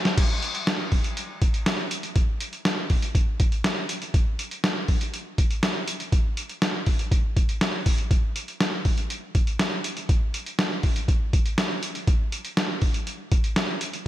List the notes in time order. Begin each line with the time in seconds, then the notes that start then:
0.05 snare, closed hi-hat
0.18 kick, closed hi-hat, crash
0.42 closed hi-hat
0.55 closed hi-hat
0.67 snare, closed hi-hat
0.92 kick, open hi-hat
1.04 closed hi-hat
1.17 closed hi-hat
1.42 kick, closed hi-hat
1.54 closed hi-hat
1.66 snare, closed hi-hat
1.91 closed hi-hat
2.03 closed hi-hat
2.16 kick, closed hi-hat
2.40 closed hi-hat
2.53 closed hi-hat
2.65 snare, closed hi-hat
2.90 kick, open hi-hat
3.02 closed hi-hat
3.15 kick, closed hi-hat
3.40 kick, closed hi-hat
3.52 closed hi-hat
3.64 snare, closed hi-hat
3.89 closed hi-hat
4.02 closed hi-hat
4.14 kick, closed hi-hat
4.39 closed hi-hat
4.51 closed hi-hat
4.64 snare, closed hi-hat
4.88 kick, open hi-hat
5.01 closed hi-hat
5.14 closed hi-hat
5.38 kick, closed hi-hat
5.51 closed hi-hat
5.63 snare, closed hi-hat
5.88 closed hi-hat
6.00 closed hi-hat
6.12 kick, closed hi-hat
6.37 closed hi-hat
6.49 closed hi-hat
6.62 snare, closed hi-hat
6.86 kick, open hi-hat
6.99 closed hi-hat
7.11 kick, closed hi-hat
7.37 kick, closed hi-hat
7.49 closed hi-hat
7.61 snare, closed hi-hat
7.86 kick, open hi-hat
7.98 closed hi-hat
8.11 kick, closed hi-hat
8.36 closed hi-hat
8.48 closed hi-hat
8.60 snare, closed hi-hat
8.85 kick, open hi-hat
8.98 closed hi-hat
9.10 closed hi-hat
9.35 kick, closed hi-hat
9.47 closed hi-hat
9.59 snare, closed hi-hat
9.84 closed hi-hat
9.97 closed hi-hat
10.09 kick, closed hi-hat
10.34 closed hi-hat
10.46 closed hi-hat
10.59 snare, closed hi-hat
10.83 kick, open hi-hat
10.96 closed hi-hat
11.08 kick, closed hi-hat
11.33 kick, closed hi-hat
11.46 closed hi-hat
11.58 snare, closed hi-hat
11.83 closed hi-hat
11.95 closed hi-hat
12.07 kick, closed hi-hat
12.32 closed hi-hat
12.45 closed hi-hat
12.57 snare, closed hi-hat
12.82 kick, open hi-hat
12.94 closed hi-hat
13.07 closed hi-hat
13.32 kick, closed hi-hat
13.44 closed hi-hat
13.56 snare, closed hi-hat
13.81 closed hi-hat
13.93 closed hi-hat